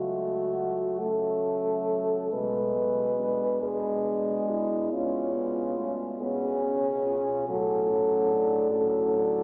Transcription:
Already playing: F#3 A3 F#4
1.00 A3 C#4 A4
2.32 B2 G#3 B4
2.75 B3
3.19 D4
3.63 G#3 G#4
4.51 E4
4.92 C#4 F4
5.34 B3
5.77 A3
6.20 B3 C#4 G#4
6.64 C#4
7.06 F4
7.48 A2 F#3 F#4 A4
7.89 C#4
8.31 D4
8.71 F#3 C#4 A4
9.16 D4

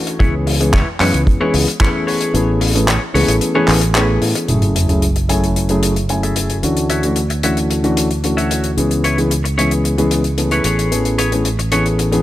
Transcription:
Already playing: E3 A3 C#4 D4 F#4
0.07 closed hi-hat
0.19 C#2 E3 G#3 B3 C#4 E4 G#4 B4 C#5, kick, closed hi-hat
0.47 muted clean electric guitar stroke, open hi-hat
0.60 E3 G#3 B3 C#4 G#4, closed hi-hat
0.73 E4 B4 C#5, kick, clap, closed hi-hat
0.99 F#2 E3 G#3 B3 C#4 E4 G#4 B4 C#5, clap, open hi-hat
1.14 C#2, closed hi-hat
1.27 kick, closed hi-hat
1.40 E3 G#3 B3 C#4 E4 G#4 B4 C#5
1.54 C#2, open hi-hat
1.67 muted clean electric guitar stroke, closed hi-hat
1.80 E3 A3 B3 C#4 E4 G#4 B4 C#5, kick, clap, closed hi-hat
2.07 G#4 B4 C#5, open hi-hat
2.21 closed hi-hat
2.33 A1 E3 A3 B3 C#4 G#4, closed hi-hat
2.61 muted clean electric guitar stroke, open hi-hat
2.74 E3 A3 B3 C#4 G#4, closed hi-hat
2.87 G#4 B4 C#5, clap, closed hi-hat
3.14 C#2 E3 A3 B3 C#4 G#4 B4 C#5, open hi-hat
3.28 A1, closed hi-hat
3.41 closed hi-hat
3.54 E3 A3 B3 C#4 G#4 B4 C#5
3.68 A1, clap, open hi-hat
3.81 muted clean electric guitar stroke, closed hi-hat
3.95 E3 A3 B3 C#4 G#4 B4 C#5, clap, closed hi-hat
4.22 A2, open hi-hat
4.35 closed hi-hat
4.48 F#1 F#3 A3 C#4 E4 G#4, closed hi-hat, sub drop
4.62 closed hi-hat
4.75 G#4 A4 E5, closed hi-hat
4.89 F#3 A3 C#4 E4 G#4, closed hi-hat
5.02 muted clean electric guitar stroke, closed hi-hat
5.16 muted clean electric guitar stroke, closed hi-hat
5.29 F#3 A3 C#4 E4 G#4 A4 E5 G#5, closed hi-hat
5.44 closed hi-hat
5.56 muted clean electric guitar stroke, closed hi-hat
5.69 F#3 A3 C#4 E4 G#4, closed hi-hat
5.83 closed hi-hat
5.96 closed hi-hat
6.09 F#3 A3 C#4 E4 G#5, closed hi-hat
6.23 G#4 A4 E5, closed hi-hat
6.36 closed hi-hat
6.50 closed hi-hat
6.63 D2 E3 A3 C#4 D4 F#4, closed hi-hat
6.77 closed hi-hat
6.90 F#4 C#5 E5, closed hi-hat
7.03 E3 A3 C#4 D4 F#4, closed hi-hat
7.16 muted clean electric guitar stroke, closed hi-hat
7.30 muted clean electric guitar stroke, closed hi-hat
7.43 E3 A3 C#4 D4 F#4 C#5 E5, closed hi-hat
7.57 closed hi-hat
7.70 muted clean electric guitar stroke, closed hi-hat
7.84 E3 A3 C#4 D4 F#4, closed hi-hat
7.97 closed hi-hat
8.11 closed hi-hat
8.23 E3 A3 C#4 D4 F#4, closed hi-hat
8.37 F#4 C#5 E5, closed hi-hat
8.51 closed hi-hat
8.64 closed hi-hat
8.77 C#2 E3 G#3 B3 C#4 G#4, closed hi-hat
8.91 closed hi-hat
9.04 E4 B4 C#5, closed hi-hat
9.18 E3 G#3 B3 C#4 G#4, closed hi-hat
9.31 muted clean electric guitar stroke, closed hi-hat
9.44 muted clean electric guitar stroke, closed hi-hat
9.58 E3 G#3 B3 C#4 E4 G#4 B4 C#5, closed hi-hat
9.71 closed hi-hat
9.84 muted clean electric guitar stroke, closed hi-hat
9.98 E3 G#3 B3 C#4 G#4, closed hi-hat
10.11 closed hi-hat
10.24 closed hi-hat
10.37 E3 A3 B3 C#4 G#4, closed hi-hat
10.51 E4 B4 C#5, closed hi-hat
10.64 A1 G#4 B4 C#5, closed hi-hat
10.79 closed hi-hat
10.91 E3 A3 B3 C#4 G#4, closed hi-hat
11.05 closed hi-hat
11.18 G#4 B4 C#5, closed hi-hat
11.32 E3 A3 B3 C#4 G#4, closed hi-hat
11.45 muted clean electric guitar stroke, closed hi-hat
11.59 muted clean electric guitar stroke, closed hi-hat
11.71 E3 A3 B3 C#4 G#4 B4 C#5, closed hi-hat
11.86 closed hi-hat
11.99 muted clean electric guitar stroke, closed hi-hat
12.12 E3 A3 B3 C#4 G#4, closed hi-hat

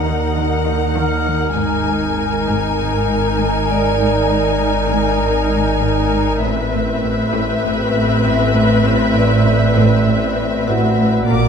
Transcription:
Already playing: D#2 D#4 A#4 F#5
0.06 D#3
0.36 D#3
0.65 D#3
0.96 D#3 F6
1.26 D#3
1.56 G#1 G#2 D#4 A#4 G#5
1.88 G#2
2.17 G#2
2.48 G#2
2.78 G#2
3.08 G#2
3.38 G#2
3.69 G#2 D5
4.00 G#2
4.29 G#2
4.60 G#2
4.90 G#2
5.21 G#2 A#4
5.51 G#2
5.81 G#2
6.11 G#2
6.42 A1 A2 C4 B4 E5
6.72 A2
7.02 A2
7.32 A2
7.64 A2
7.93 A2
8.24 A2
8.53 A2
8.84 A2
9.14 A2 D5
9.45 A2
9.75 A2
10.07 A2
10.37 A2
10.68 A2 F#4 F#5
10.97 A2
11.27 A#1 A#2 A#3 A#4 D5 D6

